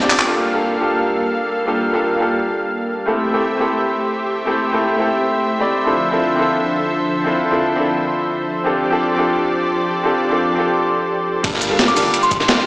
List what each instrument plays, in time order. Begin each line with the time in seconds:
Already playing: grand piano F4 G4 A4, analog synth pad A4 D5 G5
0.00 grand piano C4 D4 F4 G4 D5, shaker
0.10 clap, open hi-hat, ride, shaker
0.19 clap
0.27 analog synth pad G3 A#3 A4 F5, grand piano A#3 D4 F4 G4 A4
0.53 grand piano A#3 D4 F4 G4 A4
0.78 grand piano A#3 D4 F4 G4
0.83 grand piano A4
1.66 grand piano A#3 D4 F4 G4 A4
1.92 grand piano A#3 D4 F4 G4 A4
2.17 grand piano A#3 D4 F4 G4
2.22 grand piano A4
3.06 grand piano A3 C4 E4 G4 A4, analog synth pad A3 G4 C5 E5
3.32 grand piano A3 C4 E4 G4 A4
3.57 grand piano A3 C4 E4 G4
3.62 grand piano A4
4.45 grand piano A3 C4 E4 G4 A4
4.72 grand piano A3 C4 E4 G4 A4
4.96 grand piano A3 C4 E4 G4
5.01 grand piano A4
5.59 grand piano A3 C4 E4 G4 D5
5.84 analog synth pad D3 F3 A4, grand piano C4 D4 E4 F4 A4
6.11 grand piano C4 D4 E4 F4 A4
6.36 grand piano C4 D4 E4 F4
6.41 grand piano A4
7.24 grand piano C4 D4 E4 F4 A4
7.51 grand piano C4 D4 E4 F4 A4
7.75 grand piano C4 D4 E4 F4
7.80 grand piano A4
8.64 analog synth pad F3 G4 A4 D5, grand piano C4 D4 F4 G4 A4
8.90 grand piano C4 D4 F4 G4 A4
9.15 grand piano C4 D4 F4 G4
9.20 grand piano A4
10.03 grand piano C4 D4 F4 G4 A4
10.30 grand piano C4 D4 F4 G4 A4
10.55 grand piano C4 D4 F4 G4
10.60 grand piano A4
11.43 sub bass G1, grand piano G3 A#3 D4 F4 A4, analog synth pad G3 G4 F5, kick, closed hi-hat, crash, ride
11.54 snare
11.61 closed hi-hat, ride, shaker
11.69 grand piano G3 A#3 D4 F4 A4
11.79 snare, closed hi-hat, ride
11.88 synth bell D6, snare, shaker
11.94 sub bass D1, grand piano G3 A#3 D4 F4, snare, open hi-hat, ride, shaker
11.99 grand piano A4
12.14 closed hi-hat, ride
12.23 synth bell C6, shaker
12.31 kick, closed hi-hat, ride, shaker
12.40 snare
12.48 snare, closed hi-hat, ride
12.59 snare